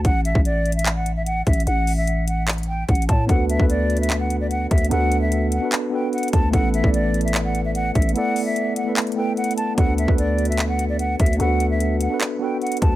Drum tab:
HH |x-----------x-----------x-----------x---x---x---x-----------x-----------x-----------x---x---x---|x-----------o-----------x-----------x-----------x--x--x--x--------------x---x---x---x-----------|x-----------x-----------x-----------x---x---x---x-----------x-----------x-----------x---x---x---|x-----------x-----------x-----------x-----------x-----------------------x--x--x--x--x-----------|
CP |------------------------------------------------x-----------------------------------------------|------------------------------------------------x-----------------------------------------------|------------------------------------------------x-----------------------------------------------|------------------------------------------------x-----------------------------------------------|
BD |o-----------------o-----------------------------------------------------------------o-----------|------------------------------------------------------------------------o-----------o-----------|o-----------------o-----------------------------------------------------------------o-----------|------------------------------------------------------------------------------------o-----------|

HH |x-----------x-----------x-----------x---x---x---x-----------x-----------x-----------x---x---x---|x-----------o-----------x-----------x-----------x--x--x--x--------------x---x---x---x-----------|x-----------x-----------x-----------x---x---x---x-----------x-----------x-----------x---x---x---|x-----------x-----------x-----------x-----------x-----------------------x--x--x--x--x-----------|
CP |------------------------------------------------x-----------------------------------------------|------------------------------------------------x-----------------------------------------------|------------------------------------------------x-----------------------------------------------|------------------------------------------------x-----------------------------------------------|
BD |o-----------------o-----------------------------------------------------------------o-----------|------------------------------------------------------------------------------------------------|o-----------------o-----------------------------------------------------------------o-----------|------------------------------------------------------------------------------------o-----------|